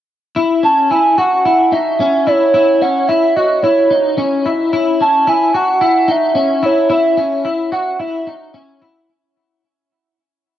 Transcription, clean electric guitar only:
0.36 0.63 E4 medium
0.63 0.90 C#4 medium
0.91 1.18 E4 medium
1.18 1.45 F#4 medium
1.45 1.72 E4 medium
1.72 1.99 D#4 medium
2.00 2.27 C#4 medium
2.27 2.53 E4 medium
2.54 2.81 E4 medium
2.82 3.09 C#4 medium
3.09 3.36 E4 medium
3.36 3.63 F#4 medium
3.64 3.91 E4 medium
3.91 4.17 D#4 medium
4.18 4.45 C#4 medium
4.46 4.72 E4 medium
4.73 5.00 E4 loud
5.01 5.27 C#4 medium
5.27 5.54 E4 medium
5.54 5.81 F#4 medium
5.81 6.08 E4 medium
6.08 6.35 D#4 medium
6.35 6.63 C#4 medium
6.63 6.88 E4 medium
6.90 7.17 E4 medium
7.17 7.45 C#4 medium
7.45 7.72 E4 medium
7.72 7.99 F#4 medium
8.00 8.27 E4 medium
8.27 8.53 D#4 medium
8.54 8.81 C#4 medium
8.81 9.08 E4 medium

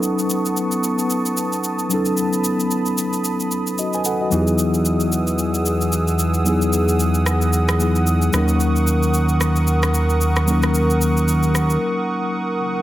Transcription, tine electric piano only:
0.00 1.86 F#3 medium
0.00 1.86 B3 medium
0.00 1.87 C#4 medium
0.00 1.88 D#4 medium
0.00 1.92 A4 medium
1.89 4.00 F#3 medium
1.89 4.01 B3 medium
1.89 4.01 C#4 medium
1.89 4.02 D#4 medium
1.94 3.50 A4 medium
3.79 3.94 F#4 soft
3.79 3.93 D#5 medium
3.94 4.05 B4 medium
3.94 4.05 G#5 medium
4.06 4.20 A4 medium
4.06 4.20 F#5 medium
4.21 4.47 F#4 medium
4.21 4.46 D#5 medium
4.30 6.41 F#3 medium
4.30 6.42 B3 medium
4.30 6.42 D#4 medium
4.30 6.43 E4 medium
4.35 4.41 G4 medium
4.42 6.47 G#4 medium
6.44 7.76 F#3 medium
6.44 7.77 B3 medium
6.44 7.78 D#4 medium
6.44 7.78 E4 medium
6.49 7.79 G#4 medium
7.80 8.31 F#3 medium
7.80 8.34 B3 medium
7.80 8.34 D#4 medium
7.80 8.34 E4 medium
7.80 8.35 G#4 medium
8.32 10.43 F#3 medium
8.32 10.44 A#3 medium
8.32 10.44 C#4 medium
8.32 10.45 D#4 medium
8.37 10.46 A#4 medium
10.46 12.57 F#3 medium
10.46 12.58 A#3 medium
10.46 12.59 C#4 medium
10.46 12.59 D#4 medium
10.51 12.60 A#4 medium

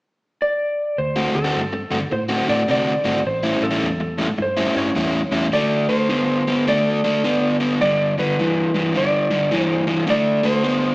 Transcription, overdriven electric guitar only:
1.16 1.38 D3 medium
1.16 1.38 A3 medium
1.16 1.37 C4 medium
1.16 1.37 F#4 medium
1.44 1.60 D3 medium
1.44 1.60 A3 medium
1.44 1.60 C4 medium
1.44 1.60 F#4 medium
1.73 muted overdriven electric guitar stroke soft
1.91 2.01 D3 medium
1.91 2.00 A3 medium
1.91 2.00 C4 medium
1.91 1.99 F#4 medium
2.00 muted overdriven electric guitar stroke soft
2.12 muted overdriven electric guitar stroke soft
2.29 2.47 D3 medium
2.29 2.47 A3 medium
2.29 2.47 C4 medium
2.29 2.47 F#4 medium
2.48 2.61 D3 medium
2.48 2.61 A3 medium
2.48 2.62 C4 medium
2.48 2.62 F#4 medium
2.68 2.92 D3 medium
2.68 2.92 A3 medium
2.68 2.92 C4 medium
2.68 2.92 F#4 medium
3.04 3.18 D3 medium
3.04 3.18 A3 medium
3.04 3.18 C4 medium
3.04 3.18 F#4 medium
3.43 3.65 A2 medium
3.43 3.65 G3 medium
3.43 3.65 C#4 medium
3.43 3.64 E4 medium
3.71 3.87 A2 medium
3.71 3.87 G3 medium
3.71 3.87 C#4 medium
3.71 3.87 E4 medium
4.00 muted overdriven electric guitar stroke soft
4.18 4.28 A2 medium
4.18 4.28 G3 medium
4.18 4.28 C#4 medium
4.18 4.28 E4 medium
4.29 muted overdriven electric guitar stroke soft
4.38 muted overdriven electric guitar stroke soft
4.57 4.75 A2 medium
4.57 4.75 G3 medium
4.57 4.75 C#4 medium
4.57 4.75 E4 medium
4.76 4.89 A2 medium
4.76 4.89 G3 medium
4.76 4.89 C#4 medium
4.76 4.89 E4 medium
4.95 5.19 A2 medium
4.95 5.19 G3 medium
4.95 5.19 C#4 medium
4.95 5.20 E4 medium
5.32 5.45 A2 medium
5.32 5.45 G3 medium
5.32 5.45 C#4 medium
5.32 5.46 E4 medium
5.53 5.85 D3 medium
5.53 5.86 A3 medium
5.89 6.07 D3 medium
5.89 6.08 A3 medium
6.09 6.42 D3 medium
6.09 6.42 B3 medium
6.47 6.65 D3 medium
6.47 6.65 B3 medium
6.67 6.99 D3 medium
6.67 7.00 A3 medium
7.04 7.22 D3 medium
7.04 7.22 A3 medium
7.24 7.56 D3 medium
7.24 7.56 B3 medium
7.60 7.78 D3 medium
7.60 7.78 B3 medium
7.81 8.13 G2 medium
7.81 8.14 D3 medium
8.18 8.36 G2 medium
8.18 8.36 D3 medium
8.39 8.70 G2 medium
8.39 8.71 E3 medium
8.74 8.92 G2 medium
8.74 8.93 E3 medium
8.94 9.27 G2 medium
8.94 9.27 D3 medium
9.31 9.49 G2 medium
9.31 9.49 D3 medium
9.51 9.84 G2 medium
9.51 9.84 E3 medium
9.87 10.06 G2 medium
9.87 10.06 E3 medium
10.07 10.40 D3 medium
10.07 10.40 A3 loud
10.43 10.62 D3 medium
10.43 10.62 A3 medium
10.63 10.95 D3 medium
10.63 10.95 B3 medium

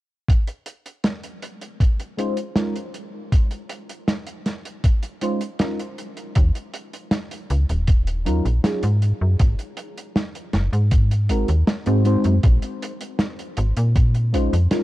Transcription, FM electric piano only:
2.17 2.37 G#3 medium
2.17 2.37 C#4 medium
2.17 2.37 D#4 medium
2.17 2.37 F4 medium
2.17 2.37 C5 medium
2.56 2.75 G#3 medium
2.56 2.75 C#4 medium
2.56 2.75 D#4 medium
2.56 2.75 F4 medium
2.56 2.75 A#4 medium
5.21 5.40 G#3 medium
5.21 5.41 C#4 medium
5.21 5.41 D#4 medium
5.21 5.41 F4 medium
5.21 5.41 C5 medium
5.60 5.79 G#3 medium
5.60 5.79 C#4 medium
5.60 5.79 D#4 medium
5.60 5.79 F4 medium
5.60 5.79 A#4 medium
8.25 8.44 F#3 medium
8.25 8.44 C#4 medium
8.25 8.45 D#4 medium
8.25 8.45 F4 medium
8.25 8.45 A#4 medium
8.63 8.82 F#3 medium
8.63 8.83 C#4 medium
8.63 8.83 D#4 medium
8.63 8.83 F4 medium
8.63 8.83 G#4 medium
11.29 11.48 G#3 medium
11.29 11.48 C4 medium
11.29 11.49 D#4 medium
11.29 11.49 F#4 medium
11.29 11.49 A#4 medium
11.86 12.03 G#3 medium
11.86 12.03 C4 medium
11.86 12.03 D#4 medium
11.86 12.03 F#4 medium
11.86 12.03 C5 medium
12.05 12.35 G#3 medium
12.05 12.35 C4 medium
12.05 12.35 D#4 medium
12.05 12.35 F#4 medium
12.05 12.35 C5 loud
14.33 14.52 G#3 medium
14.33 14.52 C#4 medium
14.33 14.52 D#4 medium
14.33 14.53 F4 medium
14.33 14.53 C5 medium
14.71 14.83 G#3 medium
14.71 14.83 C#4 medium
14.71 14.83 D#4 medium
14.71 14.83 F4 medium
14.71 14.83 A#4 medium

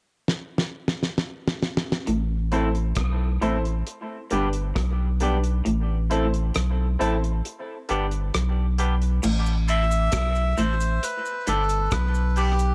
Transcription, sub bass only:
2.08 2.93 A1 loud
2.97 3.38 B1 medium
3.42 3.83 A1 medium
4.32 4.73 G1 medium
4.76 5.62 B1 loud
5.67 6.51 A1 loud
6.56 6.97 B1 medium
7.01 7.42 A1 medium
7.90 8.31 G1 medium
8.35 9.20 B1 medium
9.24 10.09 A1 loud
10.13 10.55 B1 medium
10.58 10.99 A1 medium
11.48 11.89 G1 medium
11.92 12.75 B1 loud

